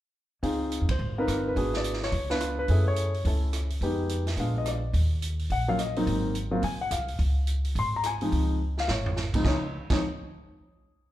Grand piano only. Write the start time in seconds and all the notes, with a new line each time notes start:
0.43 C4 D#4 F4 G#4
0.91 C5
1.18 C4 D#4 F4 A#4 B4
1.48 B4
1.56 B3 D4 F#4 G#4
1.77 D5
2.04 C#5
2.30 B3 D4 F4 B4
2.59 B4
2.70 A3 C#4 E4 G#4
2.88 C#5
3.26 A3 C#4 E4 A4
3.83 G#3 B3 D#4 G4
4.38 G#3 B3 D4 F4 F5
4.58 D#5
4.68 D5
5.52 F#5
5.68 F#3 A#3 C#4 F4 F5
5.79 D#5
5.97 F#3 A#3 C4 D#4
6.51 F#3 A#3 C4 F4
6.64 G#5
6.81 F#5
6.92 F5
7.79 C6
7.96 A#5
8.06 G#5
8.22 F3 G#3 C4 D#4
8.80 F5
8.91 C#5
9.35 C#2 F3 G#3 C4 D#4
9.44 F3 G#3 C4 D#4 C#5
9.91 F3 G#3 C4 D#4 C#5